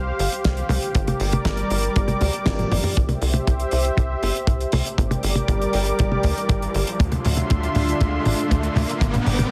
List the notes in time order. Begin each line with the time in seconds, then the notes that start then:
Already playing: C2 G4 C5 F5
0.19 G1, open hi-hat
0.32 closed hi-hat
0.44 C2, kick, snare, closed hi-hat
0.57 closed hi-hat
0.69 C2, open hi-hat, high tom
0.82 closed hi-hat
0.95 G1 G3 A#4 D5 D6, kick, closed hi-hat
1.07 closed hi-hat, high tom
1.20 G1, open hi-hat
1.33 closed hi-hat, high tom
1.45 G1, kick, snare, closed hi-hat
1.57 closed hi-hat
1.70 G1, open hi-hat
1.83 closed hi-hat
1.96 G1, kick, closed hi-hat
2.08 closed hi-hat, high tom
2.21 D2, kick, open hi-hat, high tom
2.33 closed hi-hat
2.46 G1, kick, snare, closed hi-hat, mid tom
2.59 closed hi-hat, mid tom
2.71 G1, mid tom, open hi-hat
2.84 mid tom, open hi-hat
2.97 C2 G4 C5 E5, kick, closed hi-hat, mid tom, riser
3.09 closed hi-hat, high tom
3.22 C2, open hi-hat
3.34 closed hi-hat, high tom
3.47 C2, kick, closed hi-hat, mid tom
3.60 closed hi-hat
3.71 C2, open hi-hat
3.85 closed hi-hat
3.97 C2, kick, closed hi-hat, mid tom
4.23 G1, open hi-hat
4.35 closed hi-hat
4.47 C2, kick, closed hi-hat, mid tom
4.61 closed hi-hat
4.72 C2, open hi-hat, high tom
4.86 closed hi-hat
4.98 G1 G3 G4 A#4 D5 D6, kick, closed hi-hat, mid tom
5.11 closed hi-hat, high tom
5.23 G1, open hi-hat
5.35 closed hi-hat, high tom
5.48 G1, kick, closed hi-hat, mid tom
5.62 closed hi-hat
5.73 G1, open hi-hat
5.86 closed hi-hat
5.99 G1, kick, closed hi-hat, mid tom
6.12 high tom
6.23 D2, kick, open hi-hat
6.38 closed hi-hat
6.49 G1, kick, closed hi-hat, mid tom
6.62 closed hi-hat
6.74 G1, open hi-hat
6.87 closed hi-hat
6.99 D2 D3 D4 F4 E5 C6, kick, closed hi-hat, mid tom
7.12 closed hi-hat, high tom
7.25 D2, open hi-hat, mid tom
7.37 closed hi-hat, high tom
7.50 D2, kick, closed hi-hat, mid tom
7.63 closed hi-hat
7.75 D2, open hi-hat, mid tom
7.89 closed hi-hat
8.00 D2, kick, closed hi-hat, mid tom
8.25 A1, open hi-hat, mid tom
8.38 closed hi-hat
8.51 D2, kick, closed hi-hat, mid tom
8.63 closed hi-hat
8.76 D2, open hi-hat, mid tom, high tom
8.89 closed hi-hat
9.01 G1 G3 A#4 G5 D6, kick, closed hi-hat, mid tom
9.14 closed hi-hat, mid tom, high tom
9.26 G1, open hi-hat, mid tom
9.39 closed hi-hat, mid tom, high tom